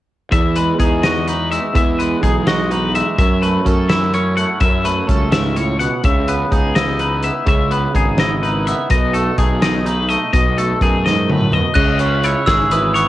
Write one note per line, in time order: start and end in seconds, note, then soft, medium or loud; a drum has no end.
0.31 0.71 E2 medium
0.31 1.72 E2 medium
0.31 0.56 E5 medium
0.31 kick medium
0.31 closed hi-hat medium
0.56 1.52 G#3 medium
0.56 0.79 B4 medium
0.56 closed hi-hat medium
0.79 1.57 E2 medium
0.79 1.27 D#4 soft
0.79 1.04 G#4 medium
0.79 kick medium
0.79 closed hi-hat medium
1.03 1.77 F#4 medium
1.03 1.27 D#5 medium
1.03 snare loud
1.03 closed hi-hat medium
1.27 1.73 D#4 soft
1.27 1.51 B4 medium
1.27 closed hi-hat medium
1.52 2.00 G#3 medium
1.52 1.75 E5 medium
1.52 closed hi-hat medium
1.74 3.18 E2 medium
1.74 2.14 E2 medium
1.74 2.00 E5 medium
1.74 kick medium
1.74 closed hi-hat medium
1.99 2.95 G#3 medium
1.99 2.23 B4 medium
1.99 closed hi-hat medium
2.23 3.01 B1 medium
2.23 2.71 D#4 medium
2.23 2.47 G#4 medium
2.23 kick medium
2.23 closed hi-hat medium
2.47 3.89 F#4 medium
2.47 2.71 D#5 medium
2.47 snare loud
2.47 closed hi-hat medium
2.71 3.16 D#4 medium
2.71 2.95 B4 medium
2.71 closed hi-hat medium
2.95 3.22 G#3 medium
2.95 3.17 E5 medium
2.95 closed hi-hat medium
3.18 3.57 F#2 medium
3.18 4.59 F#2 medium
3.18 3.42 E5 medium
3.18 kick loud
3.18 closed hi-hat medium
3.42 4.37 A3 medium
3.42 3.67 B4 medium
3.42 closed hi-hat soft
3.65 4.44 F#2 medium
3.65 4.14 C#4 medium
3.65 3.90 A4 medium
3.65 kick medium
3.65 closed hi-hat medium
3.89 6.55 E4 medium
3.89 4.14 E5 medium
3.89 snare loud
3.89 closed hi-hat medium
4.14 5.08 C#4 medium
4.14 4.36 C#5 medium
4.14 closed hi-hat soft
4.37 4.59 A3 medium
4.37 4.60 F#5 medium
4.37 closed hi-hat soft
4.60 5.00 F#2 medium
4.60 5.33 F#2 medium
4.60 4.85 E5 medium
4.60 kick loud
4.60 closed hi-hat medium
4.84 6.01 A3 medium
4.84 5.07 B4 medium
4.84 closed hi-hat medium
5.07 5.87 C#2 medium
5.07 6.32 C#4 medium
5.07 5.32 A4 medium
5.07 kick medium
5.07 closed hi-hat medium
5.32 5.57 G#2 medium
5.32 5.56 E5 medium
5.32 snare loud
5.32 closed hi-hat medium
5.56 5.80 A2 medium
5.56 5.79 C#5 medium
5.56 closed hi-hat medium
5.79 6.04 B2 medium
5.79 6.04 F#5 medium
5.79 closed hi-hat medium
6.03 6.43 C#2 medium
6.03 7.45 C#3 medium
6.03 6.28 E5 medium
6.03 kick loud
6.03 closed hi-hat medium
6.28 7.23 B3 medium
6.28 6.51 B4 medium
6.28 closed hi-hat medium
6.51 7.29 C#2 medium
6.51 7.00 D#4 medium
6.51 6.76 G#4 medium
6.51 kick medium
6.51 closed hi-hat medium
6.75 8.18 E4 medium
6.75 6.99 D#5 medium
6.75 snare loud
6.75 closed hi-hat medium
6.99 7.49 D#4 soft
6.99 7.24 B4 medium
6.99 closed hi-hat medium
7.22 7.49 B3 medium
7.22 7.47 E5 medium
7.22 closed hi-hat soft
7.46 7.86 C#2 medium
7.46 8.87 C#3 medium
7.46 7.72 E5 medium
7.46 kick loud
7.46 closed hi-hat medium
7.70 8.68 B3 medium
7.70 7.95 B4 medium
7.70 closed hi-hat soft
7.94 8.72 G#1 medium
7.94 8.43 D#4 medium
7.94 8.19 G#4 medium
7.94 kick medium
7.94 closed hi-hat soft
8.18 8.91 E4 medium
8.18 8.43 D#5 medium
8.18 snare loud
8.18 closed hi-hat medium
8.43 9.17 D#4 medium
8.43 8.66 B4 medium
8.43 closed hi-hat medium
8.67 9.14 B3 medium
8.67 8.90 E5 medium
8.67 closed hi-hat medium
8.90 9.29 B1 medium
8.90 10.30 B2 medium
8.90 9.14 D#5 medium
8.90 kick medium
8.90 closed hi-hat medium
9.13 10.09 A3 medium
9.13 9.38 A4 medium
9.13 closed hi-hat medium
9.38 10.16 B1 medium
9.38 9.85 D#4 medium
9.38 9.62 G#4 medium
9.38 kick medium
9.38 closed hi-hat medium
9.62 10.31 G#4 medium
9.62 9.85 D#5 medium
9.62 snare medium
9.62 closed hi-hat medium
9.85 10.30 D#4 medium
9.85 10.09 B4 medium
9.85 closed hi-hat medium
10.09 10.31 A3 medium
10.09 10.32 D#5 medium
10.09 closed hi-hat medium
10.33 10.72 B1 medium
10.33 11.28 B2 medium
10.33 10.57 D#5 medium
10.33 kick loud
10.33 closed hi-hat medium
10.58 11.74 A3 medium
10.58 10.81 A4 medium
10.58 closed hi-hat medium
10.81 11.59 F#2 medium
10.81 11.74 D#4 medium
10.81 11.05 G#4 medium
10.81 kick medium
10.81 closed hi-hat medium
11.06 11.29 G#2 medium
11.06 11.30 D#5 medium
11.06 snare soft
11.29 11.52 A2 medium
11.29 11.53 B4 medium
11.29 high tom medium
11.41 mid tom medium
11.52 11.75 B2 medium
11.52 11.74 D#5 medium
11.52 mid tom medium
11.74 12.34 C#2 medium
11.74 12.71 C#3 medium
11.74 11.99 D#5 medium
11.74 12.19 F#6 medium
11.74 kick loud
11.74 crash loud
11.99 12.49 C#4 medium
11.99 12.24 B4 medium
11.99 closed hi-hat medium
12.24 13.08 E4 medium
12.24 12.48 C#5 medium
12.24 closed hi-hat medium
12.46 13.06 G#1 medium
12.46 13.08 C#4 medium
12.46 12.71 G#4 medium
12.46 12.71 E6 medium
12.46 kick medium
12.46 snare loud
12.46 closed hi-hat medium
12.71 13.08 E3 medium
12.71 12.94 B4 medium
12.71 12.83 D#6 medium
12.71 closed hi-hat medium
12.94 13.08 B3 medium
12.94 13.08 C#5 medium
12.94 13.06 C#6 medium
12.94 closed hi-hat medium